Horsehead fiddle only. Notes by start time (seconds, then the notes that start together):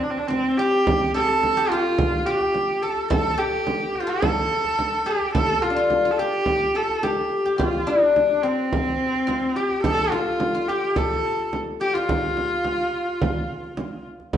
0.03 D4
0.11 C4
0.18 D4
0.28 C4
0.57 G4
1.15 A4
1.70 F4
2.27 G4
2.82 A4
3.11 A4
3.39 G4
3.96 F4
4.09 A4
5.07 G4
5.34 A4
5.62 F4
6.11 A4
6.18 G4
6.76 A4
7.04 G4
7.59 F4
7.87 D4
8.44 C4
9.56 G4
9.83 A4
10.11 F4
10.68 G4
10.97 A4
11.81 G4
11.94 F4